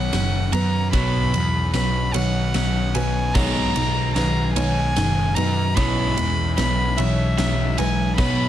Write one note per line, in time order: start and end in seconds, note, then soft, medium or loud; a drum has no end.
0.00 0.11 B1 medium
0.00 0.93 B2 medium
0.00 1.75 D#3 medium
0.00 0.52 F#3 medium
0.00 3.32 F#3 medium
0.00 0.12 C#4 medium
0.00 3.32 C#4 soft
0.00 5.73 D#4 medium
0.00 3.32 B4 medium
0.00 0.54 C#5 medium
0.00 0.54 F#5 medium
0.13 0.51 F#1 medium
0.13 0.50 B2 medium
0.13 0.50 F#3 medium
0.13 1.73 C#4 medium
0.13 snare medium
0.13 ride medium
0.53 0.91 F#2 medium
0.53 0.90 B2 medium
0.53 0.90 F#3 medium
0.53 1.33 F#3 medium
0.53 0.94 B4 medium
0.53 0.92 A#5 medium
0.53 ride medium
0.93 1.32 B1 medium
0.93 1.31 B2 medium
0.93 3.35 B2 medium
0.93 1.32 F#3 medium
0.93 1.32 B3 medium
0.93 1.74 C#5 medium
0.93 1.70 B5 loud
0.93 kick loud
0.93 snare medium
0.93 ride medium
1.33 1.72 E2 medium
1.33 1.70 B2 medium
1.33 1.70 F#3 medium
1.33 2.93 F#3 medium
1.33 ride medium
1.73 2.12 B1 medium
1.73 2.11 B2 medium
1.73 2.11 F#3 medium
1.73 2.53 C#4 medium
1.73 2.15 B4 medium
1.73 2.15 B5 medium
1.73 snare medium
1.73 ride medium
2.14 2.53 B1 medium
2.14 2.51 B2 medium
2.14 3.35 D#3 medium
2.14 2.51 F#3 medium
2.14 2.95 C#5 medium
2.14 2.96 F#5 medium
2.14 ride medium
2.54 2.93 B1 medium
2.54 2.91 B2 medium
2.54 2.91 F#3 medium
2.54 3.35 C#4 medium
2.54 snare medium
2.54 ride medium
2.94 3.33 B1 medium
2.94 3.32 B2 medium
2.94 3.35 F#3 medium
2.94 3.32 F#3 medium
2.94 3.36 B4 medium
2.94 3.36 G#5 medium
2.94 ride medium
3.34 3.73 B1 medium
3.34 3.73 B2 medium
3.34 5.77 B2 medium
3.34 3.73 D#3 medium
3.34 5.74 G#3 medium
3.34 3.74 G#3 loud
3.34 5.75 B3 medium
3.34 4.16 C#5 medium
3.34 4.13 A#5 loud
3.34 5.74 A#5 medium
3.34 kick loud
3.34 snare medium
3.34 crash medium
3.75 4.14 B1 medium
3.75 4.12 B2 medium
3.75 4.12 D#3 medium
3.75 5.36 D#4 medium
3.75 ride medium
4.14 4.54 B1 medium
4.14 4.52 B2 medium
4.14 4.53 D#3 medium
4.14 4.95 G#4 medium
4.14 4.56 B4 medium
4.14 4.52 A#5 medium
4.14 snare medium
4.14 ride medium
4.54 4.94 B1 medium
4.54 4.93 B2 medium
4.54 4.93 D#3 medium
4.54 5.77 G#3 medium
4.54 5.37 C#5 medium
4.54 5.37 G#5 loud
4.54 ride medium
4.96 5.35 F#1 medium
4.96 5.33 B2 medium
4.96 5.33 D#3 medium
4.96 5.77 G#4 medium
4.96 snare medium
4.96 ride medium
5.35 5.75 F#2 medium
5.35 5.73 B2 medium
5.35 5.73 D#3 medium
5.35 5.77 D#4 medium
5.35 5.77 B4 medium
5.35 5.76 A#5 medium
5.35 ride medium
5.75 6.15 B1 medium
5.75 6.15 B2 medium
5.75 8.18 B2 medium
5.75 6.15 E3 medium
5.75 8.16 G#3 medium
5.75 6.15 B3 loud
5.75 8.49 C#4 medium
5.75 8.16 E4 medium
5.75 8.16 B4 medium
5.75 6.58 C#5 medium
5.75 6.56 B5 loud
5.75 kick medium
5.75 snare medium
5.75 ride medium
6.17 6.56 E2 medium
6.17 6.53 B2 medium
6.17 6.54 E3 medium
6.17 7.77 G#3 medium
6.17 ride medium
6.56 6.96 B1 medium
6.56 6.94 B2 medium
6.56 6.94 E3 medium
6.56 7.38 C#4 medium
6.56 6.98 B4 medium
6.56 6.98 B5 medium
6.56 snare medium
6.56 ride medium
6.97 7.36 B1 medium
6.97 7.34 B2 medium
6.97 7.34 E3 medium
6.97 8.19 E3 medium
6.97 7.78 C#5 medium
6.97 7.79 E5 medium
6.97 ride medium
7.38 7.77 B1 medium
7.38 7.74 B2 medium
7.38 7.74 E3 medium
7.38 8.22 C#4 medium
7.38 snare medium
7.38 ride medium
7.78 8.17 B1 medium
7.78 8.14 B2 medium
7.78 8.15 E3 medium
7.78 8.19 G#3 medium
7.78 8.19 B4 medium
7.78 8.16 G#5 medium
7.78 ride medium
8.17 8.49 B1 medium
8.17 8.49 B2 medium
8.17 8.49 F#3 medium
8.17 8.49 B3 medium
8.17 8.49 D#4 medium
8.17 8.49 B4 medium
8.17 8.49 C#5 medium
8.17 8.49 B5 loud
8.17 kick loud
8.17 snare medium
8.17 crash medium